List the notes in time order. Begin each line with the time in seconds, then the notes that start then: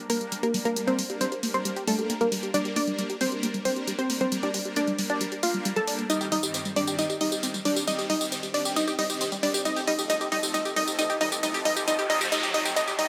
0.10 G3 A#3 D4 A#4, open hi-hat
0.21 G3 A#3 D4 A#4, closed hi-hat
0.32 G3, closed hi-hat
0.43 A#3 G4 A#4, closed hi-hat
0.54 G3 A#3 D4 A#4, open hi-hat
0.65 A#3 G4 A#4, closed hi-hat
0.76 G3 A#3 D4 A#4, closed hi-hat
0.87 G3 C4 C5, closed hi-hat
0.99 G3, open hi-hat
1.10 G3 A#3 D4 G4 A#4, closed hi-hat
1.21 G3 C4 C5, closed hi-hat
1.32 G4, closed hi-hat
1.43 G3 A#3 D4 A#4, open hi-hat
1.54 G3 A#3 C4 D4 A#4 C5, closed hi-hat
1.65 G3, closed hi-hat
1.76 G4, closed hi-hat
1.87 G3 A3 A#3 D4 A4 A#4, open hi-hat
1.99 G3 A#3 D4 G4 A#4, closed hi-hat
2.10 A#3, closed hi-hat
2.21 G3 A#3 A#4, closed hi-hat
2.32 G3 A#3 D4 A#4, open hi-hat
2.43 G4, closed hi-hat
2.54 G3 A#3 D4 A#4 D5, closed hi-hat
2.65 G4, closed hi-hat
2.76 A#3 D4 D5, open hi-hat
2.87 G3 A#3 D4 A#4, closed hi-hat
2.99 G3, closed hi-hat
3.10 G4, closed hi-hat
3.21 G3 A#3 C4 D4 A#4 C5, open hi-hat
3.32 G3 A#3 D4 G4 A#4, closed hi-hat
3.43 A#3, closed hi-hat
3.54 G3, closed hi-hat
3.65 G3 A#3 C4 D4 A#4 C5, open hi-hat
3.76 G3 A#3 D4 G4 A#4, closed hi-hat
3.87 G3, closed hi-hat
3.99 C4 G4 C5, closed hi-hat
4.10 G3 A#3 D4 A#4, open hi-hat
4.21 G3 C4 C5, closed hi-hat
4.32 G3 A#3 D4 A#4, closed hi-hat
4.43 D4 G4 D5, closed hi-hat
4.54 G3, open hi-hat
4.65 G3 A#3 D4 G4 A#4, closed hi-hat
4.76 A#3 D4 D5, closed hi-hat
4.87 G3, closed hi-hat
4.99 G3 A#3 D4 A#4, open hi-hat
5.10 G3 A#3 D4 G4 A#4 D5, closed hi-hat
5.21 G3, closed hi-hat
5.32 G4, closed hi-hat
5.43 G3 A#3 D4 F4 A#4 F5, open hi-hat
5.54 G3 A#3 D4 A#4, closed hi-hat
5.65 G3, closed hi-hat
5.76 G3 A4 A5, closed hi-hat
5.87 G3 A#3 D4 A#4 D5, open hi-hat
5.99 A#3, closed hi-hat
6.10 G2 D#3 G3 C4 D#4 G4 D#5, closed hi-hat, tambourine, riser
6.21 G4, closed hi-hat, tambourine
6.32 G3 D#4 D#5, open hi-hat
6.43 G2 D#3 G3 C4 G4, closed hi-hat, tambourine
6.54 C4, closed hi-hat, tambourine
6.65 G3, closed hi-hat, tambourine
6.76 G2 D#3 G3 C4 D4 G4 D5, open hi-hat
6.87 G2 D#3 G3 C4 G4, closed hi-hat, tambourine
6.99 G3 D#4 D#5, closed hi-hat, tambourine
7.10 G4, closed hi-hat, tambourine
7.21 G2 D#3 G3 C4 D#4 G4 D#5, open hi-hat
7.32 G2 D#3 G3 C4 G4, closed hi-hat, tambourine
7.43 C4, closed hi-hat, tambourine
7.54 G3, closed hi-hat, tambourine
7.65 G2 D#3 G3 C4 D4 G4 D5, open hi-hat
7.76 G4, closed hi-hat, tambourine
7.87 G2 D#3 G3 C4 D#4 G4 D#5, closed hi-hat, tambourine
7.99 G4, closed hi-hat, tambourine
8.10 G3 D#4 D#5, open hi-hat
8.21 G2 D#3 G3 C4 G4, closed hi-hat, tambourine
8.32 C4, closed hi-hat, tambourine
8.43 G3, closed hi-hat, tambourine
8.54 G2 D#3 G3 C4 D4 G4 D5, open hi-hat
8.65 G2 D#3 G3 C4 G4, closed hi-hat, tambourine
8.76 G3 D#4 D#5, closed hi-hat, tambourine
8.88 G4, closed hi-hat, tambourine
8.99 G2 D#3 G3 C4 D#4 G4 D#5, open hi-hat
9.10 G2 D#3 G3 C4 G4, closed hi-hat, tambourine
9.21 C4, closed hi-hat, tambourine
9.32 G3, closed hi-hat, tambourine
9.43 G2 D#3 G3 C4 D4 G4 D5, open hi-hat
9.54 G4, closed hi-hat, tambourine
9.65 F3 G3 A3 C4 D#4 A4 D#5, closed hi-hat, tambourine
9.76 G4, closed hi-hat, tambourine
9.87 G3 D#4 D#5, open hi-hat
9.99 F3 A3 C4 G4 A4, closed hi-hat, tambourine
10.10 G3 D#4 D#5, closed hi-hat, tambourine
10.21 G4, closed hi-hat, tambourine
10.32 F3 G3 A3 C4 D#4 A4 D#5, open hi-hat
10.43 F3 A3 C4 G4 A4, closed hi-hat, tambourine
10.54 G3 D#4 D#5, closed hi-hat, tambourine
10.65 G4, closed hi-hat, tambourine
10.76 F3 G3 A3 C4 D#4 A4 D#5, open hi-hat
10.87 F3 A3 C4 G4 A4, closed hi-hat, tambourine
10.99 G3 D#4 D#5, closed hi-hat, tambourine
11.10 G4, closed hi-hat, tambourine
11.21 F3 G3 A3 C4 D#4 A4 D#5, open hi-hat
11.32 G4, closed hi-hat, tambourine
11.43 F3 G3 A3 C4 D#4 A4 D#5, closed hi-hat, tambourine, noise sweep
11.54 G4, closed hi-hat, tambourine
11.65 G3 D#4 D#5, open hi-hat
11.76 F3 A3 C4 G4 A4, closed hi-hat, tambourine
11.87 G3 D#4 D#5, closed hi-hat, tambourine
11.99 G4, closed hi-hat, tambourine
12.10 F3 G3 A3 C4 D#4 A4 D#5, open hi-hat
12.21 F3 A3 C4 G4 A4, closed hi-hat, tambourine
12.32 G3 D#4 D#5, closed hi-hat, tambourine
12.43 G4, closed hi-hat, tambourine
12.54 F3 G3 A3 C4 D#4 A4 D#5, open hi-hat
12.65 F3 A3 C4 G4 A4, tambourine
12.76 G3 D#4 D#5, closed hi-hat, tambourine
12.88 G4, closed hi-hat, tambourine
12.99 F3 G3 A3 C4 D#4 A4 D#5, open hi-hat